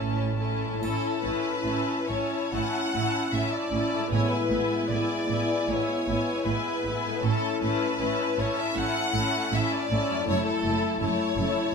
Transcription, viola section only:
0, 0, Header, 1, 2, 480
1, 0, Start_track
1, 0, Key_signature, 3, "major"
1, 0, Tempo, 843882
1, 469, Time_signature, 4, 2, 24, 8
1, 937, Tempo, 888889
1, 1417, Tempo, 796813
1, 1897, Tempo, 780234
1, 4297, Tempo, 761421
1, 6217, Tempo, 738007
1, 7172, End_track
2, 0, Start_track
2, 0, Title_t, "Viola section"
2, 0, Program_c, 0, 48
2, 0, Note_on_c, 0, 61, 35
2, 220, Note_off_c, 0, 61, 0
2, 227, Note_on_c, 0, 61, 32
2, 443, Note_off_c, 0, 61, 0
2, 450, Note_on_c, 0, 61, 39
2, 455, Note_on_c, 0, 64, 41
2, 686, Note_off_c, 0, 61, 0
2, 689, Note_off_c, 0, 64, 0
2, 695, Note_on_c, 0, 61, 34
2, 696, Note_on_c, 0, 64, 37
2, 920, Note_off_c, 0, 61, 0
2, 920, Note_off_c, 0, 64, 0
2, 926, Note_on_c, 0, 61, 38
2, 927, Note_on_c, 0, 64, 37
2, 1160, Note_off_c, 0, 64, 0
2, 1161, Note_off_c, 0, 61, 0
2, 1167, Note_on_c, 0, 64, 33
2, 1168, Note_on_c, 0, 61, 34
2, 1402, Note_off_c, 0, 64, 0
2, 1404, Note_off_c, 0, 61, 0
2, 1409, Note_on_c, 0, 64, 40
2, 1410, Note_on_c, 0, 61, 38
2, 1652, Note_off_c, 0, 61, 0
2, 1652, Note_off_c, 0, 64, 0
2, 1659, Note_on_c, 0, 61, 34
2, 1659, Note_on_c, 0, 64, 35
2, 1882, Note_off_c, 0, 61, 0
2, 1883, Note_off_c, 0, 64, 0
2, 1889, Note_on_c, 0, 61, 35
2, 1890, Note_on_c, 0, 64, 35
2, 2127, Note_off_c, 0, 61, 0
2, 2127, Note_off_c, 0, 64, 0
2, 2134, Note_on_c, 0, 61, 34
2, 2136, Note_on_c, 0, 64, 37
2, 2368, Note_off_c, 0, 64, 0
2, 2371, Note_off_c, 0, 61, 0
2, 2371, Note_on_c, 0, 59, 40
2, 2375, Note_on_c, 0, 64, 41
2, 2605, Note_off_c, 0, 59, 0
2, 2606, Note_off_c, 0, 64, 0
2, 2612, Note_on_c, 0, 59, 37
2, 2614, Note_on_c, 0, 64, 37
2, 2852, Note_off_c, 0, 59, 0
2, 2852, Note_off_c, 0, 64, 0
2, 2861, Note_on_c, 0, 64, 41
2, 2864, Note_on_c, 0, 59, 38
2, 3092, Note_off_c, 0, 59, 0
2, 3094, Note_off_c, 0, 64, 0
2, 3100, Note_on_c, 0, 59, 36
2, 3102, Note_on_c, 0, 64, 35
2, 3336, Note_off_c, 0, 59, 0
2, 3337, Note_off_c, 0, 64, 0
2, 3343, Note_on_c, 0, 59, 38
2, 3345, Note_on_c, 0, 64, 39
2, 3572, Note_off_c, 0, 64, 0
2, 3574, Note_off_c, 0, 59, 0
2, 3579, Note_on_c, 0, 64, 34
2, 3581, Note_on_c, 0, 59, 35
2, 3805, Note_off_c, 0, 59, 0
2, 3809, Note_off_c, 0, 64, 0
2, 3813, Note_on_c, 0, 59, 35
2, 3816, Note_on_c, 0, 64, 35
2, 4051, Note_off_c, 0, 59, 0
2, 4053, Note_off_c, 0, 64, 0
2, 4062, Note_on_c, 0, 59, 34
2, 4063, Note_on_c, 0, 64, 36
2, 4291, Note_off_c, 0, 64, 0
2, 4294, Note_off_c, 0, 59, 0
2, 4299, Note_on_c, 0, 64, 39
2, 4303, Note_on_c, 0, 61, 39
2, 4529, Note_off_c, 0, 64, 0
2, 4531, Note_off_c, 0, 61, 0
2, 4536, Note_on_c, 0, 64, 39
2, 4539, Note_on_c, 0, 61, 41
2, 4762, Note_off_c, 0, 61, 0
2, 4763, Note_off_c, 0, 64, 0
2, 4770, Note_on_c, 0, 61, 41
2, 4770, Note_on_c, 0, 64, 41
2, 5008, Note_off_c, 0, 61, 0
2, 5008, Note_off_c, 0, 64, 0
2, 5020, Note_on_c, 0, 61, 38
2, 5021, Note_on_c, 0, 64, 37
2, 5251, Note_off_c, 0, 64, 0
2, 5253, Note_off_c, 0, 61, 0
2, 5259, Note_on_c, 0, 64, 44
2, 5261, Note_on_c, 0, 61, 41
2, 5494, Note_off_c, 0, 64, 0
2, 5495, Note_off_c, 0, 61, 0
2, 5502, Note_on_c, 0, 64, 41
2, 5503, Note_on_c, 0, 61, 36
2, 5730, Note_off_c, 0, 64, 0
2, 5733, Note_off_c, 0, 61, 0
2, 5738, Note_on_c, 0, 64, 39
2, 5741, Note_on_c, 0, 61, 37
2, 5971, Note_off_c, 0, 64, 0
2, 5975, Note_off_c, 0, 61, 0
2, 5978, Note_on_c, 0, 64, 38
2, 5982, Note_on_c, 0, 61, 42
2, 6199, Note_off_c, 0, 64, 0
2, 6207, Note_on_c, 0, 64, 42
2, 6209, Note_on_c, 0, 57, 46
2, 6214, Note_off_c, 0, 61, 0
2, 6437, Note_off_c, 0, 57, 0
2, 6437, Note_off_c, 0, 64, 0
2, 6445, Note_on_c, 0, 57, 42
2, 6445, Note_on_c, 0, 64, 41
2, 6673, Note_off_c, 0, 64, 0
2, 6677, Note_off_c, 0, 57, 0
2, 6681, Note_on_c, 0, 64, 42
2, 6685, Note_on_c, 0, 57, 46
2, 6922, Note_off_c, 0, 57, 0
2, 6923, Note_off_c, 0, 64, 0
2, 6929, Note_on_c, 0, 64, 40
2, 6930, Note_on_c, 0, 57, 40
2, 7160, Note_off_c, 0, 57, 0
2, 7162, Note_off_c, 0, 64, 0
2, 7172, End_track
0, 0, End_of_file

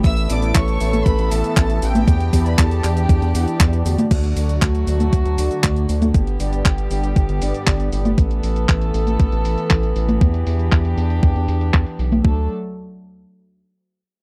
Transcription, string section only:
0, 0, Header, 1, 2, 480
1, 0, Start_track
1, 0, Key_signature, 2, "major"
1, 0, Tempo, 508475
1, 41, Time_signature, 4, 2, 24, 8
1, 13431, End_track
2, 0, Start_track
2, 0, Title_t, "String section"
2, 0, Program_c, 0, 48
2, 0, Note_on_c, 0, 59, 75
2, 41, Note_on_c, 0, 57, 79
2, 41, Note_on_c, 0, 69, 94
2, 42, Note_on_c, 0, 52, 80
2, 1941, Note_off_c, 0, 57, 0
2, 1941, Note_off_c, 0, 69, 0
2, 1960, Note_on_c, 0, 62, 77
2, 1961, Note_on_c, 0, 67, 93
2, 3843, Note_off_c, 0, 52, 0
2, 3843, Note_off_c, 0, 59, 0
2, 3861, Note_off_c, 0, 62, 0
2, 3862, Note_off_c, 0, 67, 0
2, 3882, Note_on_c, 0, 50, 78
2, 3882, Note_on_c, 0, 54, 74
2, 3883, Note_on_c, 0, 57, 74
2, 3883, Note_on_c, 0, 66, 90
2, 5782, Note_off_c, 0, 54, 0
2, 5782, Note_off_c, 0, 57, 0
2, 5782, Note_off_c, 0, 66, 0
2, 5802, Note_on_c, 0, 55, 75
2, 5802, Note_on_c, 0, 59, 73
2, 5803, Note_on_c, 0, 67, 87
2, 7684, Note_off_c, 0, 50, 0
2, 7702, Note_off_c, 0, 55, 0
2, 7702, Note_off_c, 0, 67, 0
2, 7720, Note_on_c, 0, 69, 94
2, 7721, Note_on_c, 0, 52, 83
2, 7721, Note_on_c, 0, 57, 76
2, 9621, Note_off_c, 0, 57, 0
2, 9621, Note_off_c, 0, 69, 0
2, 9640, Note_on_c, 0, 67, 87
2, 9641, Note_on_c, 0, 62, 74
2, 11523, Note_off_c, 0, 52, 0
2, 11523, Note_off_c, 0, 59, 0
2, 11541, Note_off_c, 0, 62, 0
2, 11541, Note_off_c, 0, 67, 0
2, 11561, Note_on_c, 0, 57, 67
2, 11561, Note_on_c, 0, 62, 63
2, 11561, Note_on_c, 0, 69, 78
2, 11562, Note_on_c, 0, 54, 72
2, 11784, Note_off_c, 0, 54, 0
2, 11784, Note_off_c, 0, 57, 0
2, 11784, Note_off_c, 0, 62, 0
2, 11784, Note_off_c, 0, 69, 0
2, 13431, End_track
0, 0, End_of_file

